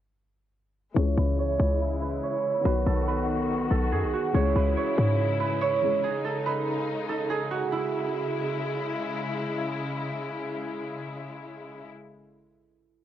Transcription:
0.94 1.17 C#2 loud
0.94 2.64 C#3 medium
0.94 2.61 E3 medium
0.94 2.62 G#3 medium
0.94 2.64 G#3 medium
0.94 2.62 C#4 medium
0.94 2.64 E4 medium
0.94 1.38 C#5 medium
0.99 2.63 G#4 medium
1.17 1.58 C#2 loud
1.17 2.02 B4 medium
1.38 2.23 C#5 medium
1.60 2.21 C#2 loud
2.02 2.65 B4 medium
2.23 4.14 C#5 medium
2.63 2.86 B1 loud
2.63 4.30 D#3 medium
2.63 4.33 D#3 medium
2.63 4.31 F#3 medium
2.63 4.33 B3 medium
2.63 4.31 B3 medium
2.63 4.33 F#4 medium
2.63 3.07 B4 medium
2.68 4.32 F#4 medium
2.86 3.68 B1 loud
2.86 3.70 A4 medium
3.08 4.55 B4 medium
3.71 3.94 B1 loud
3.71 3.98 A4 medium
3.92 4.05 F#2 loud
3.92 6.03 G#4 medium
4.03 4.13 B1 loud
4.13 6.57 F#4 medium
4.33 4.55 C#2 loud
4.33 6.02 C#3 medium
4.33 5.78 E3 medium
4.33 5.79 G#3 medium
4.33 7.69 G#3 medium
4.33 5.80 C#4 medium
4.33 6.02 E4 medium
4.33 4.76 C#5 medium
4.37 5.81 G#4 medium
4.55 4.76 C#2 loud
4.55 5.40 B4 medium
4.77 5.61 C#5 medium
4.98 5.99 G#2 loud
5.40 6.45 B4 medium
5.61 7.52 C#5 medium
5.82 6.03 E3 medium
5.82 6.03 G#3 soft
5.82 6.04 C#4 soft
5.82 6.04 G#4 medium
6.03 7.71 C#3 medium
6.03 7.71 D#4 medium
6.03 6.30 G#4 medium
6.24 7.09 A4 medium
6.46 8.51 B4 medium
7.09 7.36 A4 medium
7.30 9.57 G#4 medium
7.51 9.95 F#4 medium
7.72 11.86 C#3 medium
7.72 11.86 G#3 medium
7.72 10.33 E4 medium
7.72 11.86 E4 medium

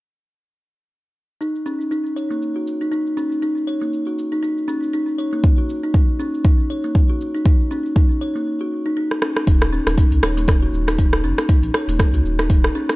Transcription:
1.41 1.53 D#4 medium
1.41 shaker soft
1.55 shaker soft
1.66 1.79 C#4 medium
1.66 shaker medium
1.81 shaker soft
1.91 1.99 D#4 medium
1.91 shaker medium
2.06 shaker soft
2.16 2.29 C#5 medium
2.16 shaker medium
2.31 2.41 A#3 medium
2.31 shaker soft
2.42 shaker soft
2.56 2.66 F#4 medium
2.56 shaker soft
2.67 shaker medium
2.81 2.87 D#4 medium
2.81 shaker soft
2.92 3.05 D#4 medium
2.92 shaker soft
3.06 shaker soft
3.17 3.30 C#4 medium
3.17 shaker medium
3.32 shaker soft
3.42 3.50 D#4 medium
3.42 shaker soft
3.57 shaker soft
3.67 3.80 C#5 medium
3.67 shaker medium
3.81 3.92 A#3 medium
3.81 shaker soft
3.93 shaker medium
4.07 4.17 F#4 medium
4.07 shaker soft
4.18 shaker medium
4.32 4.38 D#4 medium
4.32 shaker soft
4.43 4.56 D#4 medium
4.43 shaker medium
4.58 shaker soft
4.68 4.81 C#4 loud
4.68 shaker medium
4.83 shaker soft
4.93 5.01 D#4 medium
4.93 shaker medium
5.08 shaker soft
5.18 5.31 C#5 medium
5.18 shaker medium
5.33 5.43 A#3 medium
5.33 shaker soft
5.44 kick loud
5.44 shaker medium
5.58 5.68 F#4 medium
5.58 shaker soft
5.69 shaker medium
5.83 5.89 D#4 medium
5.83 shaker soft
5.94 6.07 D#4 medium
5.94 kick loud
5.94 shaker medium
6.09 shaker soft
6.20 6.32 C#4 medium
6.20 shaker medium
6.34 shaker soft
6.45 6.52 D#4 medium
6.45 kick loud
6.45 shaker medium
6.60 shaker soft
6.70 6.83 C#5 medium
6.70 shaker medium
6.84 6.95 A#3 medium
6.84 shaker soft
6.95 kick loud
6.95 shaker medium
7.10 7.19 F#4 medium
7.10 shaker soft
7.21 shaker medium
7.35 7.40 D#4 medium
7.35 shaker soft
7.45 7.58 D#4 medium
7.45 kick loud
7.45 shaker soft
7.61 shaker soft
7.71 7.84 C#4 loud
7.71 shaker medium
7.86 shaker soft
7.96 8.04 D#4 medium
7.96 kick loud
7.96 shaker medium
8.11 shaker soft
8.21 8.34 C#5 medium
8.21 shaker medium
8.36 8.46 A#3 medium
8.36 shaker soft
8.61 8.71 F#4 medium
8.86 8.92 D#4 medium
8.97 9.10 D#4 medium
9.11 cross-stick soft
9.22 9.35 C#4 medium
9.22 cross-stick medium
9.37 cross-stick medium
9.47 9.79 D#1 medium
9.47 9.60 D#4 medium
9.47 kick loud
9.47 closed hi-hat medium
9.47 shaker medium
9.62 cross-stick medium
9.62 closed hi-hat soft
9.62 shaker soft
9.72 9.85 C#4 loud
9.72 shaker medium
9.86 10.02 D#1 medium
9.86 cross-stick medium
9.86 closed hi-hat soft
9.86 shaker soft
9.98 10.05 D#4 medium
9.98 kick loud
9.98 closed hi-hat medium
9.98 shaker medium
10.12 10.19 C#2 loud
10.12 closed hi-hat soft
10.12 shaker soft
10.23 10.67 D#1 medium
10.23 10.36 C#5 medium
10.23 cross-stick medium
10.23 shaker medium
10.37 10.47 A#3 medium
10.37 closed hi-hat soft
10.37 shaker soft
10.48 kick loud
10.48 cross-stick medium
10.48 closed hi-hat medium
10.48 shaker soft
10.63 10.72 F#4 medium
10.63 shaker soft
10.73 11.25 D#1 medium
10.73 shaker medium
10.87 10.93 D#4 medium
10.87 cross-stick medium
10.87 closed hi-hat soft
10.87 shaker soft
10.98 11.11 D#4 medium
10.98 kick loud
10.98 closed hi-hat medium
10.98 shaker medium
11.13 cross-stick medium
11.13 shaker soft
11.23 11.33 F#1 medium
11.23 11.37 C#4 medium
11.23 shaker medium
11.38 cross-stick medium
11.38 closed hi-hat soft
11.38 shaker soft
11.49 11.57 D#4 medium
11.49 kick loud
11.49 closed hi-hat medium
11.49 shaker medium
11.63 11.70 A#1 medium
11.63 closed hi-hat soft
11.63 shaker soft
11.74 11.87 C#5 medium
11.74 cross-stick medium
11.74 shaker medium
11.88 12.03 D#1 medium
11.88 11.99 A#3 medium
11.88 closed hi-hat soft
11.88 shaker soft
11.99 kick loud
11.99 cross-stick medium
11.99 closed hi-hat medium
11.99 shaker medium
12.13 12.21 C#2 loud
12.13 12.24 F#4 medium
12.13 closed hi-hat soft
12.13 shaker soft
12.24 12.69 D#1 medium
12.24 shaker medium
12.39 12.45 D#4 medium
12.39 cross-stick medium
12.39 closed hi-hat soft
12.39 shaker soft
12.50 12.63 D#4 medium
12.50 kick loud
12.50 closed hi-hat medium
12.50 shaker medium
12.64 cross-stick medium
12.64 shaker soft
12.75 12.88 C#4 loud
12.75 shaker medium
12.89 cross-stick medium
12.89 closed hi-hat soft
12.89 shaker soft

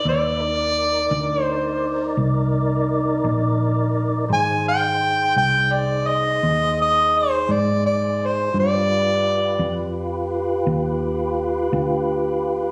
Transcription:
0.05 1.08 D#2 medium
0.05 0.41 B4 medium
0.05 0.39 D5 medium
0.05 1.43 D5 medium
0.05 0.41 E5 medium
0.39 4.25 D#4 medium
0.39 4.25 A#4 medium
0.39 4.25 D5 medium
1.11 2.14 D2 medium
1.43 2.15 C5 medium
2.17 3.20 C2 medium
3.24 4.27 A#1 medium
4.29 5.32 G#1 medium
4.29 8.50 D#4 medium
4.29 8.50 G#4 medium
4.29 8.49 C5 medium
4.34 4.65 G#5 loud
4.68 5.33 G5 loud
5.36 6.39 C2 medium
5.36 5.73 G5 loud
5.72 6.08 D5 medium
6.07 6.77 D#5 medium
6.43 7.45 D#2 medium
6.82 7.20 D#5 medium
7.18 7.53 C5 medium
7.49 8.51 G#2 medium
7.49 7.85 D5 medium
7.86 8.27 D5 medium
8.26 8.57 C5 medium
8.53 9.57 G2 medium
8.53 12.71 F4 medium
8.53 12.71 G4 medium
8.53 12.71 B4 medium
8.60 9.94 D5 medium
9.59 10.62 F2 medium
10.67 11.69 D#2 medium
11.73 12.71 D2 medium

